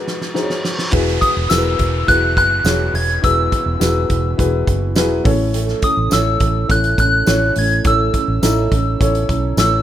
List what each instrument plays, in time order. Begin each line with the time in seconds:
Already playing: grand piano G#1 G#2 D#4 F#4 G#4 B4 C#5, reverse cymbal
0.08 snare
0.21 snare
0.34 grand piano D#4 F#4 G#4 C5, snare
0.42 grand piano C#5
0.50 snare
0.65 snare
0.79 snare
0.91 fingered electric bass E1, grand piano E3 E4 F#4 G#4 B4, steel-string acoustic guitar E3 F#3 B3 E4 G#4, kick, crash, downlifter
1.08 snare
1.21 steel-string acoustic guitar B3 E4 G#4, soft synth lead D#6, kick, closed hi-hat
1.37 fingered electric bass E1
1.50 fingered electric bass E1, steel-string acoustic guitar E3 F#3 B3 E4 G#4, grand piano E4 F#4 G#4 A#4, soft synth lead E6, snare, closed hi-hat, tambourine
1.57 grand piano B4
1.78 fingered electric bass E1, steel-string acoustic guitar B3 E4 G#4, kick, closed hi-hat
2.07 fingered electric bass E1, steel-string acoustic guitar F#3 B3 E4 G#4, grand piano E4 F#4 G#4 B4, soft synth lead F#6, kick, closed hi-hat
2.36 fingered electric bass F#1, steel-string acoustic guitar G#4, soft synth lead F#6, kick, closed hi-hat
2.64 fingered electric bass E1, steel-string acoustic guitar E3 F#3 B3 E4 G#4, grand piano E4 F#4 G#4 C#5, snare, closed hi-hat, tambourine
2.94 fingered electric bass E1, steel-string acoustic guitar B3 E4, soft synth lead G#6, open hi-hat
3.10 closed hi-hat
3.22 fingered electric bass E1, grand piano E3 E4 F#4 G#4 B4, steel-string acoustic guitar E3 F#3 B3 E4 G#4, soft synth lead E6, kick, closed hi-hat
3.52 steel-string acoustic guitar B3 E4 G#4, kick, closed hi-hat
3.66 fingered electric bass E1
3.79 fingered electric bass E1, steel-string acoustic guitar E3 F#3 B3 E4 G#4, grand piano E4 F#4 G#4 B4, snare, closed hi-hat, tambourine
4.10 fingered electric bass E1, steel-string acoustic guitar B3 E4 G#4, kick, closed hi-hat
4.37 fingered electric bass E1, steel-string acoustic guitar F#3 B3 E4 G#4, grand piano E4 F#4 G#4 B4, kick, closed hi-hat
4.67 fingered electric bass F#1, steel-string acoustic guitar B3 E4 G#4, kick, closed hi-hat
4.95 fingered electric bass E1, steel-string acoustic guitar E3 F#3 B3 E4 G#4, grand piano E4 F#4 G#4 B4, snare, closed hi-hat, tambourine
5.24 fingered electric bass A1, grand piano A2 C#4 E4 A4 C#5, steel-string acoustic guitar A3 C#4 E4 A4, kick, open hi-hat
5.53 steel-string acoustic guitar A2 E3 A3 C#4 E4 A4, closed hi-hat
5.68 snare
5.82 steel-string acoustic guitar A3 C#4 E4 A4, soft synth lead D#6, kick, closed hi-hat
5.97 fingered electric bass A1
6.10 fingered electric bass A1, steel-string acoustic guitar A2 E3 A3 C#4 E4 A4, grand piano C#4 E4 A4 C#5, soft synth lead E6, snare, closed hi-hat, tambourine
6.40 fingered electric bass A1, steel-string acoustic guitar A3 C#4 E4 A4, kick, closed hi-hat
6.68 fingered electric bass A1, steel-string acoustic guitar A3 C#4 E4 A4, grand piano C#4 E4 A4 C#5, soft synth lead F#6, kick, closed hi-hat
6.84 closed hi-hat
6.98 fingered electric bass A1, steel-string acoustic guitar A3 C#4 E4 A4, soft synth lead F#6, kick, closed hi-hat
7.26 fingered electric bass A1, steel-string acoustic guitar A2 E3 A3 C#4 E4 A4, grand piano C#4 E4 A4 C#5, snare, closed hi-hat, tambourine
7.56 fingered electric bass A1, grand piano A2, steel-string acoustic guitar A3 C#4 E4 A4, soft synth lead G#6, open hi-hat
7.70 closed hi-hat
7.84 fingered electric bass A1, steel-string acoustic guitar A2 E3 A3 C#4 E4 A4, grand piano C#4 E4 A4 C#5, soft synth lead E6, kick, closed hi-hat
8.13 steel-string acoustic guitar A3 C#4 E4 A4, kick, closed hi-hat
8.28 fingered electric bass A1
8.41 fingered electric bass A1, steel-string acoustic guitar A2 E3 A3 C#4 E4 A4, grand piano C#4 D#4 E4 A4, snare, closed hi-hat, tambourine
8.71 fingered electric bass A1, steel-string acoustic guitar A3 C#4 E4 A4, kick, closed hi-hat
9.00 fingered electric bass A1, steel-string acoustic guitar A3 C#4 E4 A4, grand piano C#4 E4 A4 C#5, kick, closed hi-hat
9.15 closed hi-hat
9.28 fingered electric bass B1, steel-string acoustic guitar A3 C#4 E4 A4, kick, closed hi-hat
9.57 fingered electric bass A1, steel-string acoustic guitar A2 E3 A3 C#4 E4 A4, grand piano C#4 E4 A4 C#5, soft synth lead E6, snare, closed hi-hat, tambourine